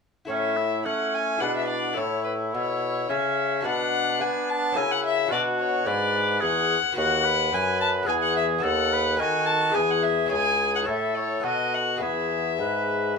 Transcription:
0.25 oboe C#4, lute E4 A4 C#5
0.29 bassoon A2, lute A2, violin E5
0.57 oboe E4
0.85 bassoon A3, lute A3, oboe C#4, violin F#5
1.15 violin G#5
1.37 bassoon B2, oboe D4, lute E4 G#4 B4, violin F#5
1.42 lute B2
1.56 violin E5
1.68 violin D5
1.93 lute E4 A4 C#5, oboe E4
1.97 bassoon A2, lute A2, violin C#5
2.24 violin B4
2.54 bassoon B2, lute B2, violin C#5
3.09 bassoon C#3, lute C#3, oboe C#4, violin E5
3.61 lute D4 F#4 B4
3.65 bassoon B2, lute B2, oboe D4, violin F#5
4.21 lute B3, bassoon B3, violin G#5
4.49 violin A5
4.72 lute C#4 F#4 A#4
4.76 lute C#3, bassoon C#3, oboe E4, violin G#5
4.92 violin F#5
5.05 violin E5
5.26 lute D4 F#4 B4
5.31 lute B2, bassoon B2, oboe F#4, violin D5
5.59 violin C#5
5.86 lute G#2, bassoon G#2, oboe B4, violin D5
6.41 lute E2, bassoon E2, oboe G#4, violin F#5
6.92 lute B3 F#4 B4
6.96 lute D#2, bassoon D#2, oboe F#4, violin F#5
7.25 oboe B4
7.52 lute F#2, bassoon F#2, violin G#5
7.81 violin A5
8.03 lute B3 G#4 B4, oboe G#4
8.07 lute E2, bassoon E2, violin G#5
8.23 violin F#5
8.36 violin E5
8.58 lute B3 A4 B4
8.63 lute D#2, bassoon D#2, oboe A4, violin F#5
8.93 oboe B4
9.19 lute D#3, bassoon D#3, oboe F#4, violin G#5
9.46 violin A5
9.70 lute E4 G#4 B4
9.74 lute E2, bassoon E2, oboe G#4, violin G#5
9.90 violin F#5
10.03 violin E5
10.26 lute E4 G#4 C#5
10.30 bassoon C#2, oboe G#4, violin G#5
10.76 violin F#5
10.82 lute E4 A4 C#5
10.87 lute A2, bassoon A2, oboe A4, violin E5
11.17 violin C#5
11.40 lute B2 B3 A4 B4
11.44 bassoon B2, oboe F#4, violin D#5
11.74 violin F#5
11.96 lute B3 G#4 B4
12.00 lute E2, bassoon E2, oboe G#4, violin E5
12.58 lute G#2, bassoon G#2, oboe B4

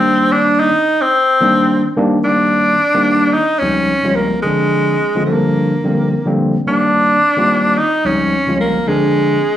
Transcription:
Already playing: tine electric piano D#3 G3 A#3 C4 D4, tenor saxophone C4
0.32 tenor saxophone D4
0.60 tenor saxophone D#4
1.02 tenor saxophone C4
1.41 tine electric piano D#3 G3 A#3 C4 D4
1.97 tine electric piano D#3 G3 A#3 C4 D4
2.24 tine electric piano D#3 G3 A#3 C4 D4, tenor saxophone D4
2.94 tine electric piano D#3 G3 A#3 C4 D4
3.34 tenor saxophone D#4
3.59 tine electric piano C#2 F3 G3 G#3 C4 D#4, tenor saxophone C#4
4.04 tine electric piano C#2 F3 G3 G#3 C4 F4
4.15 tenor saxophone A#3
4.43 tine electric piano D3 F3 G#3 C4 D4, tenor saxophone G#3
5.15 tine electric piano D3 F3 G#3 C4 F4
5.26 tine electric piano D3 F3 G3 A#3 D4, tenor saxophone A#3
5.84 tine electric piano D3 F3 G3 A#3 C4
6.25 tine electric piano D3 F3 G3 A#3 C4
6.66 tine electric piano D#3 G3 A#3 C4 D4, tenor saxophone D4
7.37 tine electric piano D#3 G3 A#3 C4 F4
7.78 tenor saxophone D#4
8.05 tine electric piano C#2 F3 G3 G#3 C4 D#4, tenor saxophone C#4
8.47 tine electric piano C#2 F3 G3 G#3 C4 F4
8.61 tenor saxophone A#3
8.87 tine electric piano D3 F3 G#3 C4 D4, tenor saxophone G#3

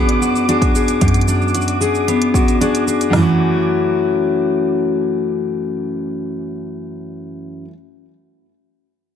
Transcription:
Already playing: steel-string acoustic guitar F#2 B3 D4 F#4 G#4, synth texture D6
0.09 closed hi-hat
0.21 steel-string acoustic guitar F#4, cabasa
0.36 cabasa
0.48 steel-string acoustic guitar D4 F#4 G#4, closed hi-hat, cabasa
0.62 kick, closed hi-hat, cabasa
0.75 steel-string acoustic guitar G#4, cabasa
0.88 closed hi-hat, cabasa
1.01 steel-string acoustic guitar F#2, kick, closed hi-hat, cabasa
1.08 closed hi-hat
1.14 closed hi-hat, cabasa
1.21 closed hi-hat
1.28 steel-string acoustic guitar D4, cabasa
1.42 cabasa
1.48 cabasa
1.55 steel-string acoustic guitar F#4, closed hi-hat, cabasa
1.61 cabasa
1.68 closed hi-hat, cabasa
1.81 steel-string acoustic guitar G#4, cabasa
1.95 cabasa
2.08 steel-string acoustic guitar B3, closed hi-hat, cabasa
2.22 closed hi-hat
2.34 steel-string acoustic guitar F#4, kick, cabasa
2.48 closed hi-hat, cabasa
2.61 steel-string acoustic guitar D4 F#4 G#4, closed hi-hat, cabasa
2.75 closed hi-hat, cabasa
2.87 steel-string acoustic guitar G#4, cabasa
3.01 closed hi-hat, cabasa
3.10 steel-string acoustic guitar F#2 F#3, snare, floor tom, open hi-hat
3.16 steel-string acoustic guitar E3 A3
3.20 steel-string acoustic guitar C#4 F#4

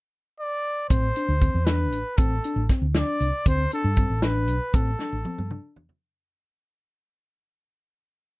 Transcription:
0.40 trumpet D5
0.89 fretless electric bass A1, tine electric piano C4, trumpet C5, kick, closed hi-hat
1.16 tine electric piano D4, closed hi-hat
1.28 fretless electric bass D2
1.41 tine electric piano C4, kick, closed hi-hat
1.54 fretless electric bass E2
1.65 tine electric piano D4, trumpet B4, snare, closed hi-hat
1.92 fretless electric bass A1, closed hi-hat
2.17 fretless electric bass A1, tine electric piano C4, trumpet A4, kick, closed hi-hat
2.44 tine electric piano D4, closed hi-hat
2.56 fretless electric bass A1
2.69 tine electric piano C4, kick, snare, closed hi-hat
2.82 fretless electric bass D2
2.95 tine electric piano D4, trumpet D5, snare, closed hi-hat
3.20 fretless electric bass C2, closed hi-hat
3.46 fretless electric bass D2, tine electric piano C4, trumpet C5, kick, closed hi-hat
3.71 tine electric piano D4, trumpet A4, closed hi-hat
3.84 fretless electric bass G2
3.96 tine electric piano C4, kick, closed hi-hat
4.10 fretless electric bass A1
4.22 tine electric piano D4, trumpet B4, snare, closed hi-hat
4.48 fretless electric bass B1, closed hi-hat
4.73 fretless electric bass A1, tine electric piano C4, trumpet A4, kick, closed hi-hat
4.99 tine electric piano D4, snare
5.13 fretless electric bass A1
5.25 tine electric piano C4, high tom
5.38 fretless electric bass G2, high tom
5.51 tine electric piano D4, mid tom
5.76 fretless electric bass E2, floor tom
5.89 floor tom

